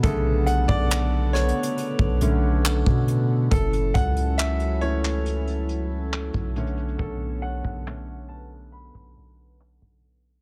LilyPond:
<<
  \new Staff \with { instrumentName = "Analog synth pad" } { \time 4/4 \key b \minor \tempo 4 = 69 << { <b a' fis''>1 | <fis cis' a'>2.~ <fis cis' a'>8 <b fis''>8~ | <b fis''>1 | } \\ { b'1 | e'2.~ e'8 cis''8~ | cis''4. b'2~ b'8 | } >> }
  \new Staff \with { instrumentName = "Grand piano" } { \time 4/4 \key b \minor a'8 fis''16 d''8. cis''2 r8 | a'8 fis''8 e''8 cis''4. r4 | a'8 fis''4 a''8 b''4. r8 | }
  \new Staff \with { instrumentName = "Grand piano" } { \time 4/4 \key b \minor <cis d a>2~ <cis d a>8 <d a cis'>8 r4 | r4. <e a cis'>4. r8 <d a cis'>8~ | <d a cis'>4 <d a cis'>8 r2 r8 | }
  \new Staff \with { instrumentName = "808-style bass" } { \clef bass \time 4/4 \key b \minor b,,8. b,,4 r8 b,,16 b,,8. b,8. | fis,,8 cis,2~ cis,8. b,,8. | b,,8. b,,4. b,,16 b,,8. b,,8. | }
  \new DrumStaff \with { instrumentName = "Drums" } \drummode { \time 4/4 <hh bd>8 hh16 bd16 \tuplet 3/2 { <hc hh>16 r16 r16 <hh ss>16 hh16 hh16 } hh16 bd16 hh8 <hc hh>16 bd16 hh8 | <hh bd>16 hh16 <hh bd>16 hh16 <hc hh>16 hh16 hh16 <hc hh>16 hh16 hh16 hh8 <hc hh>16 <hh bd>16 hh32 hh32 hh32 hh32 | bd8. bd16 hc4 r16 bd8. hc16 bd8. | }
>>